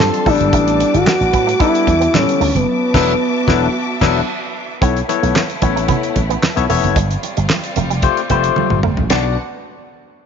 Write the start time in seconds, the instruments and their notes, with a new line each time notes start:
Already playing: string section G3 F5 A5 C6, analog synth lead A4
0.00 tine electric piano G3 C4 D4 F4 A4, snare, clap
0.14 closed hi-hat
0.26 slap bass A1, tine electric piano G3 B3 D4 E4 A4, clean electric guitar A3, analog synth lead D4, string section B4 D6, kick, open hi-hat
0.40 slap bass G1, closed hi-hat, high conga
0.53 slap bass A1, clean electric guitar A3, kick, closed hi-hat
0.68 closed hi-hat
0.80 muted clean electric guitar stroke, closed hi-hat
0.94 slap bass G1, clean electric guitar G3, analog synth lead F#4, closed hi-hat
1.06 muted clean electric guitar stroke, snare, clap, high conga
1.21 slap bass A1, closed hi-hat
1.33 slap bass A2, clean electric guitar B3, kick, closed hi-hat, muted conga
1.47 clean electric guitar A3, closed hi-hat
1.60 tine electric piano G3 B3 D4 E4 A4, clean electric guitar B3, analog synth lead E4, kick, closed hi-hat
1.75 closed hi-hat
1.86 slap bass E2, muted clean electric guitar stroke, kick, closed hi-hat, muted conga
2.00 clean electric guitar B3, closed hi-hat
2.13 slap bass A2, tine electric piano D3 G3 B3 E4 A4, analog synth lead C#4, snare, clap, high conga
2.29 closed hi-hat
2.40 slap bass D2, clean electric guitar A3, open hi-hat
2.55 slap bass F#1, analog synth lead B3, closed hi-hat, high conga
2.67 string section F#4 E5 A5 D6
2.94 slap bass E1, tine electric piano F#3 B3 D4 E4 A4, kick, snare, crash
3.47 slap bass E1, tine electric piano F#3 B3 D4 E4 A4, kick, snare
4.01 slap bass E1, tine electric piano F#3 B3 D4 E4 A4, kick, snare, crash
4.81 slap bass B1, string section A3 B3 E4, tine electric piano B3 E4 A4 C#5, clean electric guitar B3, kick, closed hi-hat
4.96 closed hi-hat
5.08 tine electric piano B3 E4 A4 C#5, muted clean electric guitar stroke, closed hi-hat, muted conga
5.23 slap bass B1, clean electric guitar A3, closed hi-hat
5.35 muted clean electric guitar stroke, snare, clap, high conga
5.50 closed hi-hat
5.62 slap bass A1, tine electric piano B3 E4 A4 C#5, clean electric guitar B3, kick, closed hi-hat, muted conga
5.76 clean electric guitar A3, closed hi-hat
5.88 clean electric guitar B3, kick, closed hi-hat, low conga
6.03 closed hi-hat
6.15 slap bass A1, muted clean electric guitar stroke, kick, closed hi-hat, muted conga
6.30 clean electric guitar B3, closed hi-hat
6.43 snare, clap, high conga
6.56 slap bass B1, tine electric piano B3 E4 A4 C#5, closed hi-hat
6.69 slap bass E1, clean electric guitar A3, tine electric piano B3 E4 A4 C#5, open hi-hat
6.84 slap bass F#1, closed hi-hat, high conga
6.95 slap bass G1, string section G3 C4 F4, clean electric guitar G3, kick, closed hi-hat
7.11 closed hi-hat
7.23 muted clean electric guitar stroke, closed hi-hat, muted conga
7.37 slap bass G1, clean electric guitar G3, closed hi-hat
7.49 muted clean electric guitar stroke, snare, clap, high conga
7.63 closed hi-hat
7.76 slap bass F1, clean electric guitar A3, closed hi-hat, muted conga, low conga
7.90 clean electric guitar G3, closed hi-hat
8.02 tine electric piano A3 F4 G4 C5, kick, closed hi-hat
8.17 closed hi-hat
8.30 slap bass F1, tine electric piano A3 F4 G4 C5, clean electric guitar B3, kick, closed hi-hat, muted conga
8.44 closed hi-hat
8.56 high tom, high conga
8.70 slap bass G1, mid tom
8.83 slap bass G1, clean electric guitar A3, mid tom
8.97 slap bass A1, floor tom, high conga
9.10 slap bass B1, string section B2 B3 D4 F#4 F#5, tine electric piano B3 D4 F#4 D5, clean electric guitar B3, snare, ride bell, muted conga